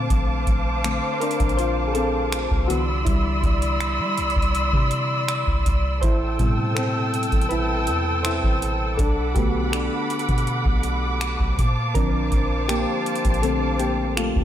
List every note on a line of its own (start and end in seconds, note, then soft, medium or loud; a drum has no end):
0.00 0.80 D3 medium
0.00 0.80 A3 medium
0.00 0.81 C4 medium
0.00 2.66 C5 medium
0.00 2.66 F5 medium
0.00 2.65 A5 medium
0.00 2.65 D6 medium
0.10 0.46 A#1 loud
0.10 kick loud
0.10 closed hi-hat medium
0.47 1.01 A#1 medium
0.47 kick medium
0.47 closed hi-hat medium
0.84 1.18 D3 soft
0.84 1.18 A3 soft
0.84 1.18 C4 medium
0.84 finger snap loud
0.84 closed hi-hat medium
1.13 1.21 C5 medium
1.20 1.56 D4 medium
1.20 1.59 A#4 loud
1.20 closed hi-hat medium
1.31 closed hi-hat medium
1.40 2.47 A#1 loud
1.40 kick medium
1.40 closed hi-hat medium
1.49 closed hi-hat soft
1.57 1.87 F4 medium
1.57 1.89 C5 loud
1.57 closed hi-hat medium
1.87 1.95 G#4 medium
1.94 2.66 C4 medium
1.94 2.65 A4 loud
1.94 closed hi-hat medium
2.32 finger snap loud
2.32 closed hi-hat medium
2.51 3.04 C2 loud
2.51 kick medium
2.68 3.19 D3 medium
2.68 3.19 E3 soft
2.68 2.85 B3 medium
2.68 2.82 F#4 medium
2.68 6.00 D5 medium
2.68 5.99 B5 medium
2.68 5.99 C6 medium
2.68 5.99 E6 medium
2.68 closed hi-hat medium
3.05 3.42 C2 loud
3.05 5.62 G3 medium
3.05 5.61 E4 medium
3.05 kick loud
3.05 closed hi-hat medium
3.43 4.01 C2 loud
3.43 kick medium
3.43 closed hi-hat soft
3.62 closed hi-hat medium
3.80 finger snap loud
3.80 closed hi-hat medium
3.99 4.19 G3 loud
4.18 4.35 C2 medium
4.18 closed hi-hat medium
4.30 closed hi-hat medium
4.36 4.72 C2 loud
4.36 kick medium
4.42 closed hi-hat soft
4.55 closed hi-hat medium
4.73 5.44 C3 loud
4.73 kick medium
4.91 closed hi-hat medium
5.28 finger snap loud
5.28 closed hi-hat medium
5.47 5.65 C2 loud
5.47 kick medium
5.66 6.02 C2 loud
5.66 kick medium
5.66 closed hi-hat medium
6.01 6.38 A1 loud
6.01 6.73 E4 medium
6.01 11.54 A4 medium
6.01 6.72 C5 loud
6.01 8.96 G5 medium
6.01 8.96 A5 medium
6.01 8.96 E6 medium
6.01 kick loud
6.01 closed hi-hat medium
6.39 7.29 A2 medium
6.39 6.89 B2 medium
6.39 6.89 C3 medium
6.39 6.89 G3 soft
6.39 kick medium
6.39 closed hi-hat medium
6.75 7.47 C4 medium
6.75 7.52 A4 medium
6.75 finger snap loud
6.75 closed hi-hat medium
7.14 closed hi-hat medium
7.23 closed hi-hat medium
7.32 7.90 A1 loud
7.32 kick medium
7.32 closed hi-hat soft
7.41 closed hi-hat soft
7.49 8.21 E4 medium
7.49 8.26 B4 loud
7.49 closed hi-hat medium
7.87 8.41 E2 medium
7.87 closed hi-hat medium
8.23 8.96 E4 medium
8.23 9.00 C5 loud
8.23 finger snap loud
8.23 closed hi-hat medium
8.43 8.97 A1 loud
8.43 kick medium
8.62 closed hi-hat medium
8.97 9.35 B1 loud
8.97 9.34 D4 medium
8.97 9.36 A4 loud
8.97 11.56 F#5 medium
8.97 11.56 B5 medium
8.97 14.44 D6 medium
8.97 kick loud
8.97 closed hi-hat medium
9.35 9.89 B1 loud
9.35 9.85 D3 medium
9.35 9.86 A3 medium
9.35 9.51 B3 medium
9.35 9.85 F#4 medium
9.35 9.49 G4 medium
9.35 kick medium
9.35 closed hi-hat medium
9.72 10.81 D4 medium
9.72 10.80 A4 medium
9.72 finger snap loud
9.72 closed hi-hat medium
10.10 closed hi-hat medium
10.19 closed hi-hat medium
10.29 10.64 B2 loud
10.29 kick medium
10.29 closed hi-hat soft
10.38 closed hi-hat soft
10.47 closed hi-hat medium
10.65 11.37 B1 loud
10.65 kick medium
10.83 closed hi-hat medium
11.21 finger snap loud
11.21 closed hi-hat medium
11.40 11.58 B1 loud
11.40 kick medium
11.58 11.94 A#2 loud
11.58 14.44 C5 medium
11.58 14.44 F5 medium
11.58 14.44 A5 medium
11.58 kick medium
11.58 closed hi-hat medium
11.94 12.31 A#1 loud
11.94 13.42 D3 medium
11.94 14.44 F3 medium
11.94 13.43 C4 medium
11.94 12.66 D4 medium
11.94 12.71 A#4 loud
11.94 kick loud
11.94 closed hi-hat medium
12.32 12.86 A#1 medium
12.32 kick medium
12.32 closed hi-hat medium
12.68 13.40 A#3 medium
12.68 13.45 G4 loud
12.68 finger snap loud
12.68 closed hi-hat medium
13.06 closed hi-hat medium
13.15 closed hi-hat medium
13.25 14.32 A#1 loud
13.25 kick medium
13.25 closed hi-hat soft
13.34 closed hi-hat soft
13.42 13.77 D3 medium
13.42 13.77 A3 soft
13.42 13.78 C4 medium
13.42 13.77 A4 loud
13.42 closed hi-hat medium
13.79 14.16 A#3 medium
13.79 14.18 G4 medium
13.79 closed hi-hat medium
14.17 14.44 A3 medium
14.17 14.44 F4 medium
14.17 finger snap loud
14.17 closed hi-hat medium
14.36 14.44 C2 loud
14.36 kick medium